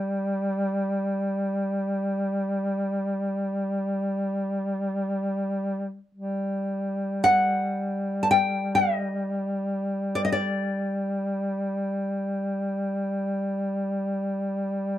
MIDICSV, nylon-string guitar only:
0, 0, Header, 1, 2, 480
1, 0, Start_track
1, 0, Tempo, 500000
1, 14386, End_track
2, 0, Start_track
2, 0, Title_t, "Nylon-string guitar"
2, 0, Program_c, 0, 24
2, 6949, Note_on_c, 0, 78, 65
2, 7895, Note_off_c, 0, 78, 0
2, 7899, Note_on_c, 0, 81, 46
2, 7972, Note_off_c, 0, 81, 0
2, 7975, Note_on_c, 0, 79, 63
2, 8396, Note_off_c, 0, 79, 0
2, 8400, Note_on_c, 0, 75, 57
2, 9742, Note_off_c, 0, 75, 0
2, 9746, Note_on_c, 0, 74, 56
2, 9821, Note_off_c, 0, 74, 0
2, 9837, Note_on_c, 0, 75, 47
2, 9908, Note_off_c, 0, 75, 0
2, 9912, Note_on_c, 0, 74, 53
2, 14085, Note_off_c, 0, 74, 0
2, 14386, End_track
0, 0, End_of_file